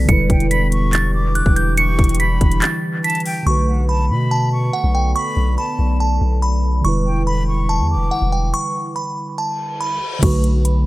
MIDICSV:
0, 0, Header, 1, 8, 480
1, 0, Start_track
1, 0, Key_signature, 2, "minor"
1, 0, Tempo, 422535
1, 99, Time_signature, 4, 2, 24, 8
1, 12340, End_track
2, 0, Start_track
2, 0, Title_t, "Flute"
2, 0, Program_c, 0, 73
2, 337, Note_on_c, 0, 79, 79
2, 566, Note_off_c, 0, 79, 0
2, 578, Note_on_c, 0, 83, 82
2, 806, Note_off_c, 0, 83, 0
2, 817, Note_on_c, 0, 85, 87
2, 1269, Note_off_c, 0, 85, 0
2, 1299, Note_on_c, 0, 86, 85
2, 1976, Note_off_c, 0, 86, 0
2, 2017, Note_on_c, 0, 85, 102
2, 2469, Note_off_c, 0, 85, 0
2, 2498, Note_on_c, 0, 83, 96
2, 2950, Note_off_c, 0, 83, 0
2, 3458, Note_on_c, 0, 81, 97
2, 3686, Note_off_c, 0, 81, 0
2, 3698, Note_on_c, 0, 79, 82
2, 3926, Note_off_c, 0, 79, 0
2, 4178, Note_on_c, 0, 78, 73
2, 4406, Note_off_c, 0, 78, 0
2, 4417, Note_on_c, 0, 81, 82
2, 4646, Note_off_c, 0, 81, 0
2, 4658, Note_on_c, 0, 83, 85
2, 5110, Note_off_c, 0, 83, 0
2, 5140, Note_on_c, 0, 85, 75
2, 5816, Note_off_c, 0, 85, 0
2, 5860, Note_on_c, 0, 83, 101
2, 6311, Note_off_c, 0, 83, 0
2, 6340, Note_on_c, 0, 81, 79
2, 6790, Note_off_c, 0, 81, 0
2, 8018, Note_on_c, 0, 79, 75
2, 8246, Note_off_c, 0, 79, 0
2, 8258, Note_on_c, 0, 83, 79
2, 8486, Note_off_c, 0, 83, 0
2, 8496, Note_on_c, 0, 85, 79
2, 8948, Note_off_c, 0, 85, 0
2, 8979, Note_on_c, 0, 86, 82
2, 9656, Note_off_c, 0, 86, 0
2, 12340, End_track
3, 0, Start_track
3, 0, Title_t, "Synth bell"
3, 0, Program_c, 1, 98
3, 98, Note_on_c, 1, 97, 110
3, 550, Note_off_c, 1, 97, 0
3, 580, Note_on_c, 1, 95, 79
3, 1030, Note_off_c, 1, 95, 0
3, 1058, Note_on_c, 1, 93, 94
3, 1510, Note_off_c, 1, 93, 0
3, 1538, Note_on_c, 1, 90, 87
3, 1729, Note_off_c, 1, 90, 0
3, 1776, Note_on_c, 1, 91, 83
3, 1969, Note_off_c, 1, 91, 0
3, 2018, Note_on_c, 1, 97, 115
3, 2470, Note_off_c, 1, 97, 0
3, 2496, Note_on_c, 1, 95, 86
3, 2949, Note_off_c, 1, 95, 0
3, 2979, Note_on_c, 1, 93, 84
3, 3430, Note_off_c, 1, 93, 0
3, 3457, Note_on_c, 1, 95, 89
3, 3909, Note_off_c, 1, 95, 0
3, 3937, Note_on_c, 1, 85, 105
3, 4389, Note_off_c, 1, 85, 0
3, 4418, Note_on_c, 1, 83, 72
3, 4870, Note_off_c, 1, 83, 0
3, 4899, Note_on_c, 1, 81, 86
3, 5350, Note_off_c, 1, 81, 0
3, 5378, Note_on_c, 1, 78, 83
3, 5569, Note_off_c, 1, 78, 0
3, 5619, Note_on_c, 1, 79, 82
3, 5810, Note_off_c, 1, 79, 0
3, 5857, Note_on_c, 1, 85, 112
3, 6309, Note_off_c, 1, 85, 0
3, 6338, Note_on_c, 1, 83, 82
3, 6789, Note_off_c, 1, 83, 0
3, 6820, Note_on_c, 1, 81, 80
3, 7271, Note_off_c, 1, 81, 0
3, 7297, Note_on_c, 1, 83, 84
3, 7749, Note_off_c, 1, 83, 0
3, 7777, Note_on_c, 1, 85, 105
3, 8229, Note_off_c, 1, 85, 0
3, 8258, Note_on_c, 1, 83, 75
3, 8710, Note_off_c, 1, 83, 0
3, 8738, Note_on_c, 1, 81, 92
3, 9190, Note_off_c, 1, 81, 0
3, 9216, Note_on_c, 1, 78, 81
3, 9408, Note_off_c, 1, 78, 0
3, 9457, Note_on_c, 1, 79, 78
3, 9649, Note_off_c, 1, 79, 0
3, 9698, Note_on_c, 1, 85, 114
3, 10149, Note_off_c, 1, 85, 0
3, 10176, Note_on_c, 1, 83, 81
3, 10628, Note_off_c, 1, 83, 0
3, 10658, Note_on_c, 1, 81, 79
3, 11110, Note_off_c, 1, 81, 0
3, 11139, Note_on_c, 1, 83, 87
3, 11590, Note_off_c, 1, 83, 0
3, 11619, Note_on_c, 1, 85, 110
3, 12070, Note_off_c, 1, 85, 0
3, 12098, Note_on_c, 1, 83, 75
3, 12340, Note_off_c, 1, 83, 0
3, 12340, End_track
4, 0, Start_track
4, 0, Title_t, "Ambient pad"
4, 0, Program_c, 2, 92
4, 99, Note_on_c, 2, 52, 82
4, 99, Note_on_c, 2, 62, 78
4, 100, Note_on_c, 2, 67, 92
4, 3901, Note_off_c, 2, 52, 0
4, 3901, Note_off_c, 2, 62, 0
4, 3901, Note_off_c, 2, 67, 0
4, 3937, Note_on_c, 2, 59, 80
4, 3937, Note_on_c, 2, 74, 92
4, 3938, Note_on_c, 2, 69, 75
4, 7740, Note_off_c, 2, 59, 0
4, 7740, Note_off_c, 2, 69, 0
4, 7740, Note_off_c, 2, 74, 0
4, 7780, Note_on_c, 2, 52, 80
4, 7780, Note_on_c, 2, 62, 72
4, 7780, Note_on_c, 2, 79, 88
4, 9680, Note_off_c, 2, 52, 0
4, 9680, Note_off_c, 2, 62, 0
4, 9680, Note_off_c, 2, 79, 0
4, 12340, End_track
5, 0, Start_track
5, 0, Title_t, "Tine electric piano"
5, 0, Program_c, 3, 4
5, 0, Control_c, 3, 64, 127
5, 55, Note_on_c, 3, 50, 68
5, 84, Note_on_c, 3, 55, 63
5, 111, Control_c, 3, 64, 0
5, 113, Note_on_c, 3, 64, 60
5, 141, Note_on_c, 3, 71, 77
5, 301, Control_c, 3, 64, 127
5, 3872, Note_off_c, 3, 50, 0
5, 3886, Note_off_c, 3, 55, 0
5, 3895, Note_on_c, 3, 50, 66
5, 3900, Note_off_c, 3, 64, 0
5, 3915, Note_off_c, 3, 71, 0
5, 3923, Note_on_c, 3, 57, 62
5, 3952, Note_on_c, 3, 66, 55
5, 3954, Control_c, 3, 64, 0
5, 3981, Note_on_c, 3, 71, 72
5, 4121, Control_c, 3, 64, 127
5, 7711, Note_off_c, 3, 50, 0
5, 7725, Note_off_c, 3, 57, 0
5, 7734, Note_on_c, 3, 50, 65
5, 7740, Note_off_c, 3, 66, 0
5, 7754, Note_off_c, 3, 71, 0
5, 7763, Note_on_c, 3, 55, 54
5, 7791, Control_c, 3, 64, 0
5, 7791, Note_on_c, 3, 64, 61
5, 7821, Note_on_c, 3, 71, 77
5, 7994, Control_c, 3, 64, 127
5, 9711, Control_c, 3, 64, 0
5, 11311, Note_off_c, 3, 50, 0
5, 11325, Note_off_c, 3, 55, 0
5, 11339, Note_off_c, 3, 64, 0
5, 11354, Note_off_c, 3, 71, 0
5, 11574, Note_on_c, 3, 50, 67
5, 11603, Note_on_c, 3, 57, 62
5, 11632, Note_on_c, 3, 66, 64
5, 11661, Note_on_c, 3, 71, 73
5, 11847, Control_c, 3, 64, 127
5, 12340, Note_off_c, 3, 50, 0
5, 12340, Note_off_c, 3, 57, 0
5, 12340, Note_off_c, 3, 66, 0
5, 12340, Note_off_c, 3, 71, 0
5, 12340, End_track
6, 0, Start_track
6, 0, Title_t, "808-style bass"
6, 0, Program_c, 4, 38
6, 98, Note_on_c, 4, 28, 111
6, 329, Note_off_c, 4, 28, 0
6, 338, Note_on_c, 4, 28, 107
6, 1613, Note_off_c, 4, 28, 0
6, 1658, Note_on_c, 4, 28, 105
6, 2234, Note_off_c, 4, 28, 0
6, 2257, Note_on_c, 4, 28, 103
6, 2719, Note_off_c, 4, 28, 0
6, 2739, Note_on_c, 4, 28, 100
6, 2969, Note_off_c, 4, 28, 0
6, 3937, Note_on_c, 4, 35, 105
6, 4657, Note_on_c, 4, 47, 97
6, 4675, Note_off_c, 4, 35, 0
6, 5342, Note_off_c, 4, 47, 0
6, 5498, Note_on_c, 4, 35, 103
6, 5844, Note_off_c, 4, 35, 0
6, 6098, Note_on_c, 4, 35, 101
6, 6329, Note_off_c, 4, 35, 0
6, 6578, Note_on_c, 4, 35, 98
6, 7039, Note_off_c, 4, 35, 0
6, 7058, Note_on_c, 4, 35, 103
6, 7750, Note_off_c, 4, 35, 0
6, 7778, Note_on_c, 4, 28, 99
6, 8858, Note_on_c, 4, 40, 99
6, 8875, Note_off_c, 4, 28, 0
6, 9038, Note_on_c, 4, 28, 98
6, 9055, Note_off_c, 4, 40, 0
6, 9209, Note_off_c, 4, 28, 0
6, 9338, Note_on_c, 4, 28, 101
6, 9684, Note_off_c, 4, 28, 0
6, 11618, Note_on_c, 4, 35, 102
6, 12340, Note_off_c, 4, 35, 0
6, 12340, End_track
7, 0, Start_track
7, 0, Title_t, "Reverse cymbal"
7, 0, Program_c, 5, 119
7, 10659, Note_on_c, 5, 60, 85
7, 11619, Note_off_c, 5, 60, 0
7, 12340, End_track
8, 0, Start_track
8, 0, Title_t, "Drums"
8, 98, Note_on_c, 9, 42, 83
8, 99, Note_on_c, 9, 36, 127
8, 212, Note_off_c, 9, 36, 0
8, 212, Note_off_c, 9, 42, 0
8, 338, Note_on_c, 9, 36, 107
8, 339, Note_on_c, 9, 42, 72
8, 452, Note_off_c, 9, 36, 0
8, 452, Note_off_c, 9, 42, 0
8, 458, Note_on_c, 9, 42, 44
8, 572, Note_off_c, 9, 42, 0
8, 578, Note_on_c, 9, 42, 87
8, 692, Note_off_c, 9, 42, 0
8, 818, Note_on_c, 9, 42, 76
8, 932, Note_off_c, 9, 42, 0
8, 1057, Note_on_c, 9, 39, 113
8, 1057, Note_on_c, 9, 42, 78
8, 1171, Note_off_c, 9, 39, 0
8, 1171, Note_off_c, 9, 42, 0
8, 1537, Note_on_c, 9, 42, 80
8, 1651, Note_off_c, 9, 42, 0
8, 1658, Note_on_c, 9, 36, 105
8, 1772, Note_off_c, 9, 36, 0
8, 1777, Note_on_c, 9, 42, 80
8, 1890, Note_off_c, 9, 42, 0
8, 2016, Note_on_c, 9, 42, 83
8, 2129, Note_off_c, 9, 42, 0
8, 2257, Note_on_c, 9, 36, 103
8, 2257, Note_on_c, 9, 42, 45
8, 2317, Note_off_c, 9, 42, 0
8, 2317, Note_on_c, 9, 42, 54
8, 2371, Note_off_c, 9, 36, 0
8, 2377, Note_off_c, 9, 42, 0
8, 2377, Note_on_c, 9, 42, 67
8, 2437, Note_off_c, 9, 42, 0
8, 2437, Note_on_c, 9, 42, 76
8, 2497, Note_off_c, 9, 42, 0
8, 2497, Note_on_c, 9, 42, 84
8, 2610, Note_off_c, 9, 42, 0
8, 2737, Note_on_c, 9, 42, 64
8, 2739, Note_on_c, 9, 36, 100
8, 2851, Note_off_c, 9, 42, 0
8, 2852, Note_off_c, 9, 36, 0
8, 2857, Note_on_c, 9, 42, 65
8, 2971, Note_off_c, 9, 42, 0
8, 2977, Note_on_c, 9, 39, 115
8, 2977, Note_on_c, 9, 42, 80
8, 3091, Note_off_c, 9, 39, 0
8, 3091, Note_off_c, 9, 42, 0
8, 3458, Note_on_c, 9, 42, 80
8, 3518, Note_off_c, 9, 42, 0
8, 3518, Note_on_c, 9, 42, 71
8, 3579, Note_off_c, 9, 42, 0
8, 3579, Note_on_c, 9, 42, 57
8, 3638, Note_off_c, 9, 42, 0
8, 3638, Note_on_c, 9, 42, 47
8, 3698, Note_on_c, 9, 46, 82
8, 3752, Note_off_c, 9, 42, 0
8, 3811, Note_off_c, 9, 46, 0
8, 11617, Note_on_c, 9, 42, 83
8, 11617, Note_on_c, 9, 49, 94
8, 11618, Note_on_c, 9, 36, 126
8, 11731, Note_off_c, 9, 42, 0
8, 11731, Note_off_c, 9, 49, 0
8, 11732, Note_off_c, 9, 36, 0
8, 11858, Note_on_c, 9, 42, 70
8, 11972, Note_off_c, 9, 42, 0
8, 12098, Note_on_c, 9, 42, 83
8, 12212, Note_off_c, 9, 42, 0
8, 12340, End_track
0, 0, End_of_file